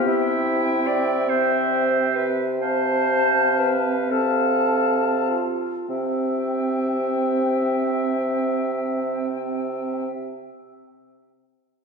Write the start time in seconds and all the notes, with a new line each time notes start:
0.04 C3 C4 E4 E5 G5
0.87 D5
1.28 C4 C5 E5 G5
2.15 B4
2.60 C4 C5 F5 A5
3.59 B4
4.10 C4 A4 F5 A5
5.29 F4
5.89 C3 C4 E5 G5